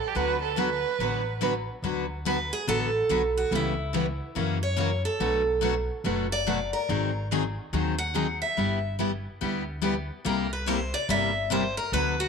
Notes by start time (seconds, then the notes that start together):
Already playing: D5
0.08 G4
0.15 D2 D3 F#3 B3 F#4 B4
0.42 A4
0.58 D3 F#3 B3 F#4 B4
0.99 A1 D3 F#3 B3 F#4 B4
1.42 D3 F#3 B3 F#4 B4
1.82 D2 D3 F#3 B3 F#4 B4
2.26 D3 F#3 B3 F#4 B4
2.53 G#4
2.67 A1 D3 F#3 B3 F#4 A4 B4
3.10 B1 D3 F#3 B3 F#4 B4
3.37 F#4
3.51 C#2 C#3 E3 G3 B3 C#4 E4 G4 B4
3.55 E4
3.94 C#3 E3 G3 B3 C#4 E4 G4 B4
4.35 F#2 C#3 E3 F#3 A#3 C#4 E4 F#4 A#4
4.63 C#5
4.77 C#3 E3 F#3 A#3 C#4 E4 F#4 A#4
5.05 A4
5.20 B1 B2 F#3 A3 D4 F#4 B4
5.63 B2 F#3 A3 D4 F#4 B4
6.04 F#1 B2 F#3 A3 D4 F#4 B4
6.32 D5
6.46 B2 F#3 A3 D4 F#4 B4
6.73 A#4
6.89 G#1 D#3 F#3 C4 D#4 G#4
7.31 D#3 F#3 C4 D#4 G#4
7.73 D#2 D#3 F#3 C4 D#4 G#4
7.98 F#5
8.14 D#3 F#3 C4 D#4 G#4
8.42 E5
8.57 G1 G3 B3 E4 G4
8.99 G3 B3 E4 G4
9.41 D2 G3 B3 E4 G4
9.83 G3 B3 E4 G4
10.25 C2 C3 G3 A#3 E4 G4 A#4
10.53 B4
10.67 C3 G3 A#3 E4 G4 C5
10.94 D5
11.09 G1 C3 G3 A#3 E4 G4 E5
11.52 C3 G3 A#3 E4 G4 C5
11.77 A#4
11.92 D2 D3 F#3 B3 F#4 B4
12.20 F#4